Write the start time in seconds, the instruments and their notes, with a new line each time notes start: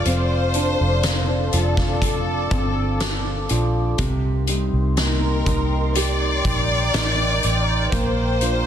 Already playing: grand piano F3, nylon-string guitar D4, analog synth pad A4 D5 F5 C6
0.05 fingered electric bass F1, nylon-string guitar F3, grand piano C4, violin section C5, closed hi-hat
0.54 nylon-string guitar D4, grand piano D4, closed hi-hat
0.81 fingered electric bass F1
1.03 nylon-string guitar C4, snare, closed hi-hat
1.53 fingered electric bass F1, grand piano F3, nylon-string guitar D4, violin section A4, analog synth pad D6, closed hi-hat
1.77 kick, snare
2.02 nylon-string guitar A4, kick, closed hi-hat
2.51 fingered electric bass G1, grand piano C4, nylon-string guitar D4, kick, closed hi-hat
3.00 nylon-string guitar A4, snare, closed hi-hat
3.49 fingered electric bass A#1, grand piano F3, nylon-string guitar D4, closed hi-hat
3.98 fingered electric bass C2, grand piano C3, nylon-string guitar C3, analog synth pad D#4 A#4 G5 C6, kick, closed hi-hat
4.47 grand piano G3, nylon-string guitar D#4, closed hi-hat
4.73 fingered electric bass C2
4.97 nylon-string guitar A#3, grand piano D#4, violin section A#4, snare, closed hi-hat
5.46 fingered electric bass C2, nylon-string guitar D#4, kick, closed hi-hat
5.95 grand piano G4, nylon-string guitar A#4, violin section D5, closed hi-hat
6.45 fingered electric bass A#1, nylon-string guitar D#4, kick, closed hi-hat
6.94 fingered electric bass A1, grand piano D#4, nylon-string guitar A#4, snare, closed hi-hat
7.43 fingered electric bass A1, nylon-string guitar D#4, closed hi-hat
7.92 fingered electric bass A#1, grand piano A#3, violin section C5, analog synth pad F5 D6, kick, closed hi-hat
8.41 nylon-string guitar D4, grand piano F4, closed hi-hat